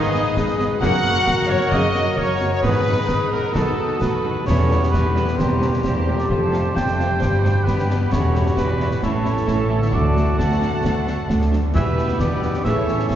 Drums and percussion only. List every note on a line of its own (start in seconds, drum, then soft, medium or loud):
0.03 snare soft
0.15 snare soft
0.37 concert bass drum medium
0.37 snare medium
0.48 snare soft
0.60 snare soft
0.82 concert bass drum medium
0.82 snare medium
0.94 snare soft
1.05 snare soft
1.27 concert bass drum medium
1.27 snare medium
1.50 snare soft
1.61 snare medium
1.72 concert bass drum medium
1.95 snare soft
2.18 concert bass drum medium
2.41 snare soft
2.63 concert bass drum medium
2.63 snare medium
3.09 concert bass drum medium
3.09 snare medium
3.55 concert bass drum medium
3.55 snare medium
4.02 concert bass drum medium
4.02 snare medium
4.48 concert bass drum medium
4.48 snare medium
4.48 crash soft
4.71 snare soft
4.83 snare medium
4.94 concert bass drum medium
4.94 snare medium
5.16 snare soft
5.28 snare soft
5.39 concert bass drum medium
5.39 snare medium
5.62 snare medium
5.73 snare soft
5.84 concert bass drum medium
5.84 snare medium
6.18 snare soft
6.30 concert bass drum medium
6.53 snare soft
6.77 concert bass drum medium
6.77 snare medium
6.88 snare soft
7.00 snare soft
7.22 concert bass drum medium
7.22 snare medium
7.45 snare soft
7.67 concert bass drum medium
7.67 snare medium
7.79 snare soft
7.90 snare medium
8.13 concert bass drum medium
8.13 snare medium
8.35 snare soft
8.46 snare soft
8.57 concert bass drum medium
8.57 snare medium
8.80 snare soft
8.91 snare soft
9.03 concert bass drum medium
9.03 snare medium
9.25 snare soft
9.37 snare soft
9.48 concert bass drum medium
9.48 snare medium
9.82 snare soft
9.93 concert bass drum medium
10.17 snare soft
10.40 concert bass drum medium
10.40 snare medium
10.52 snare soft
10.62 snare soft
10.85 concert bass drum medium
10.85 snare medium
11.07 snare soft
11.30 concert bass drum medium
11.30 snare medium
11.41 snare soft
11.53 snare soft
11.76 concert bass drum medium
11.76 snare medium
11.76 crash soft
11.98 snare soft
12.08 snare soft
12.19 concert bass drum medium
12.19 snare medium
12.43 snare soft
12.54 snare soft
12.65 concert bass drum medium
12.65 snare medium
12.88 snare soft
12.99 snare soft
13.11 concert bass drum medium
13.11 snare medium